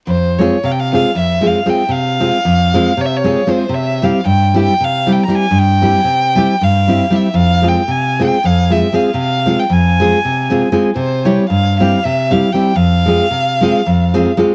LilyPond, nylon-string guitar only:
\new Staff \with { instrumentName = "Nylon-string guitar" } { \time 7/8 \key f \minor \tempo 4 = 116 << { r8 <aes c' f' aes'>8 r8 <aes c' f' aes'>8 r8 <aes c' f' aes'>8 <aes c' f' aes'>8 | r8 <aes c' f' aes'>8 r8 <aes c' f' aes'>8 r8 <aes c' f' aes'>8 <aes c' f' aes'>8 | r8 <g c' e' g'>8 r8 <g c' e' g'>8 r8 <g c' e' g'>8 <g c' e' g'>8 | r8 <g c' e' g'>8 r8 <g c' e' g'>8 r8 <g c' e' g'>8 <g c' e' g'>8 |
r8 <aes c' f' aes'>8 r8 <aes c' f' aes'>8 r8 <aes c' f' aes'>8 <aes c' f' aes'>8 | r8 <aes c' f' aes'>8 r8 <aes c' f' aes'>8 r8 <aes c' f' aes'>8 <aes c' f' aes'>8 | r8 <g c' e' g'>8 r8 <g c' e' g'>8 r8 <g c' e' g'>8 <g c' e' g'>8 | r8 <aes c' f' aes'>8 r8 <aes c' f' aes'>8 r8 <aes c' f' aes'>8 <aes c' f' aes'>8 | } \\ { f,4 c4 f,4 r8 | c4 f,4 c4 r8 | c4 g,4 c4 r8 | g,4 c4 g,4 r8 |
f,4 c4 f,4 r8 | c4 f,4 c4 r8 | c4 g,4 c4 r8 | f,4 c4 f,4 r8 | } >> }